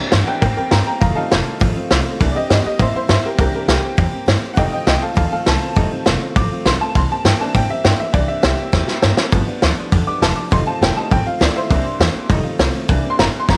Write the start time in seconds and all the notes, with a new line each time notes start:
Already playing: E3 A#3 D4 G4
0.00 A#3 C4
0.12 G2 E3 A#3 C4 G4, snare, open hi-hat
0.23 E3 A#3 A#4 F#5
0.27 A#3 C4 D4 G4 G5
0.41 A2 C3 E3 A#3 C4 G4 A#4 G5, kick, open hi-hat
0.56 A#3 C4 G4 A#4 G5, muted upright bass stroke
0.71 G2 E3 A#3 C4 G4 G5 A#5, snare, open hi-hat
0.86 A#3 C4 G4 G5 A#5, muted upright bass stroke
1.00 F1 F2 C3 D#3 A3 C4 F4 F5 A#5, kick, open hi-hat
1.15 D#3 G3 A3 C4 D#4 F4 A4 F5
1.30 F1 D#3 A3 C4 F4, snare, open hi-hat
1.45 D#3 A3 C4 F4
1.59 A1 F2 C3 D#3 A3 C4 F4, kick, open hi-hat
1.75 D#3 A3 C4 F4, muted upright bass stroke
1.90 C2 D#3 A3 C4 F4, snare, open hi-hat
2.05 D#3 A3 C4 F4
2.20 C2 C3 E3 A#3 C4 D4 G4, kick, open hi-hat
2.32 G4 D5, muted upright bass stroke
2.36 A#3 C4 D#5
2.49 G2 E3 A#3 C4 G4 D#5, snare, open hi-hat
2.63 A#3 C4 G4 D#5, muted upright bass stroke
2.79 A2 C3 E3 A#3 C4 E4 G4 C5, kick, open hi-hat
2.93 A#3 C4 E4 G4 C5, muted upright bass stroke
3.07 G2 E3 A#3 C4 G4, snare, open hi-hat
3.11 E4 C5
3.22 A#3 C4 G4, muted upright bass stroke
3.27 A#4
3.38 C2 C3 E3 A#3 C4 D4 G4 A#4, kick, open hi-hat
3.53 A#3 C4 G4 A#4, muted upright bass stroke
3.68 C2 E3 A#3 C4 G4, snare, open hi-hat
3.82 A#3 C4 G4
3.97 E2 C3 E3 A#3 C4 G4, kick, open hi-hat
4.11 A#3 C4 G4, muted upright bass stroke
4.26 G2 E3 A#3 C4 G4, snare, open hi-hat
4.41 A#3 C4 G4
4.54 F1 F2 C3 D#3 G3 A3 C4 F4 D#5 F#5, kick, open hi-hat
4.58 D#4 G5
4.71 D#3 A3 C4 F4 D#5 G5, muted upright bass stroke
4.84 C2 D#3 A3 C4 F4 D#5 G5, snare, open hi-hat
5.00 D#3 A3 C4 F4 A4 F5
5.14 D2 F2 C3 D#3 A3 C4 F4 A4 F5, kick, open hi-hat
5.29 D#3 A3 C4 F4 A4 F5
5.45 C2 D#3 A3 C4 F4 A5, snare, open hi-hat
5.61 D#3 A3 C4 F4
5.75 F1 F2 C3 D#3 G3 A3 C4 D#4 F4, kick, open hi-hat
5.90 D#3 A3 C4 F4, muted upright bass stroke
6.05 F1 D#3 A3 C4 F4, snare, open hi-hat
6.21 D#3 A3 C4 F4
6.36 A1 F2 C3 D#3 A3 C4 F4 D6, kick, open hi-hat
6.50 D#3 A3 C4 F4, muted upright bass stroke
6.65 A#1 D#3 A3 C4 F4 C6, snare, open hi-hat
6.80 D#3 A3 C4 F4 A5, muted upright bass stroke
6.95 C2 C3 E3 A#3 C4 G4 C6, kick, open hi-hat
7.11 A#3 C4 G4 A5
7.24 G2 E3 A#3 C4 G4 G5, snare, open hi-hat
7.40 E3 A#3 C4 D4 G4 A5
7.55 A2 C3 E3 A#3 C4 G4 G5, kick, open hi-hat
7.69 A#3 C4 G4 E5, muted upright bass stroke
7.84 G2 E3 A#3 C4 D4 G4 G5, snare, open hi-hat
7.98 A#3 C4 G4 E5
8.13 C2 C3 E3 A#3 C4 D4 G4 D5, kick, open hi-hat
8.28 A#3 C4 G4 E5, muted upright bass stroke
8.42 C2 E3 A#3 C4 G4 E5, snare, open hi-hat
8.57 A#3 C4 G4
8.72 E2 C3 E3 A#3 C4 G4, kick, snare
8.87 A#3 C4 G4, snare
9.02 G2 E3 A#3 C4 G4, snare
9.16 A#3 C4 G4, snare
9.32 G1 G2 D3 F3 A3 B3 D4 G4, kick, open hi-hat
9.47 F3 B3 D4 G4
9.62 D2 F3 B3 D4 G4, snare, open hi-hat
9.77 F3 B3 D4 G4
9.91 E2 G2 D3 F3 B3 D4 G4, kick, open hi-hat
10.06 F3 B3 D4 G4 D6, muted upright bass stroke
10.21 E1 F3 B3 G4 A5, snare, open hi-hat
10.36 F3 B3 D4 G4 D6
10.50 F1 F2 C3 D#3 G3 A3 C4 D#4 F4 C6, kick, open hi-hat
10.65 D#3 A3 C4 F4 A5, muted upright bass stroke
10.81 F1 D#3 A3 C4 F4 G5, snare, open hi-hat
10.96 D#3 G3 A3 C4 D#4 F4 A5
11.10 A1 F2 C3 D#3 A3 C4 F4 G5, kick, open hi-hat
11.26 D#3 A3 C4 F4 F5, muted upright bass stroke
11.38 D2 D#3 A3 C4 F4 D5, snare, open hi-hat
11.55 D#3 A3 C4 E4 F4 C5
11.70 C2 C3 E3 A#3 C4 D4 G4, kick, open hi-hat
11.85 A#3 C4 G4, muted upright bass stroke
11.99 E2 E3 A#3 C4 G4, snare, open hi-hat
12.14 A#3 C4 G4
12.29 F1 F2 C3 D#3 G3 A3 C4 D#4 F4, kick, open hi-hat
12.43 D#3 A3 C4 F4, muted upright bass stroke
12.58 C2 D#3 A3 C4 F4, snare, open hi-hat
12.73 D#3 A3 C4 F4
12.88 C2 C3 E3 A#3 C4 D4 G4, kick, open hi-hat
13.04 A#3 C4 G4, muted upright bass stroke
13.10 C6
13.18 F#1 E3 A#3 C4 G4 A#5, snare, open hi-hat
13.33 A#3 C4 G4
13.40 C6
13.49 G1 G2 D3 F3 A3 B3 D4 G4 A#5, kick, snare